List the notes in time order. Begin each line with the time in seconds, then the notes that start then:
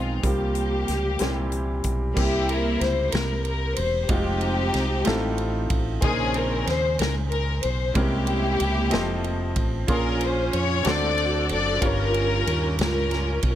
Already playing: B1 D#3 F3 G#3 C4 D#4 F4 G#4
0.23 C2 C3 G3 A#3 C4 F4 G4, kick, closed hi-hat
0.55 closed hi-hat
0.88 C#2, snare, closed hi-hat
1.19 C2 A#2 E3 G3 A#3 C4 C#4 G4, snare, closed hi-hat
1.27 E4
1.52 closed hi-hat
1.84 B1, kick, closed hi-hat
2.14 C2 C3 G3 A#3 C4 E4 G4, kick, crash
2.19 G4
2.49 A#4, ride bell
2.81 C#2 C5, snare, ride bell
3.12 C2 A#4, snare, ride bell
3.45 A#4, ride bell
3.76 E1 C5, ride bell
4.09 F1 G#3 C4 D#4 F4 F#4 G4, kick, ride bell
4.17 G4
4.41 ride bell
4.74 C2, snare, ride bell
5.04 A1 A2 A3 C4 D#4 F4 A4, snare, ride bell
5.38 ride bell
5.70 A1, kick, ride bell
6.01 A#1 A#2 C#3 C4 C#4 D#4 G#4 C5, kick, ride bell
6.06 A#4
6.34 A#4, ride bell
6.67 D#2 C5, snare, ride bell
6.99 C#2 A#4, snare, ride bell
7.31 A#4, ride bell
7.63 B1 C5, ride bell
7.94 C2 C3 G#3 C4 C#4 E4 G4 A#4, kick, ride bell
7.99 A#3 E4
8.27 ride bell
8.60 C#2, ride bell
8.90 F1 F3 C4 A4 C5 D#5, snare, ride bell
9.24 ride bell
9.56 A1, kick, ride bell
9.87 A#1 A#2 C#4 F4 G#4 A#4 C6, kick, ride bell
9.91 F4 A#4
10.21 C5, ride bell
10.53 F2 C#5, ride bell
10.83 D2 D3 C4 D4 F#4 A4 C5, ride bell
10.87 F#4 A4 D5, snare
11.18 ride bell
11.49 F#1 D5, ride bell
11.79 G1 G2 C#4 F4 G4 A#4, kick, ride bell
11.84 C#4 A#4 C#5
12.14 ride bell
12.47 D#2, ride bell
12.79 C#2 C#4 F4 A#4, snare, ride bell
13.11 snare, ride bell
13.43 B1, kick, ride bell